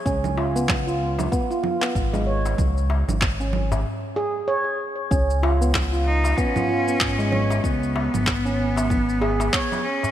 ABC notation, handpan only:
X:1
M:4/4
L:1/16
Q:"Swing 16ths" 1/4=95
K:Dbmix
V:1 name="Handpan"
D z F C2 F3 C F F C2 A, d z | z4 z D z4 A2 d4 | D z F C2 F3 C F F C2 A, d z | z4 z D z4 A2 d4 |]